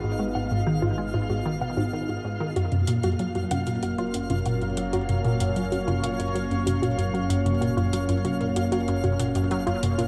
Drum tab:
HH |----------------|xxxxxxxxxxxxxxxx|xxxxxxxxxxxxxxxx|xxxxxxxxxxxxxxxx|
T1 |----------------|-o----o----o----|o----o----o----o|----o----o----o-|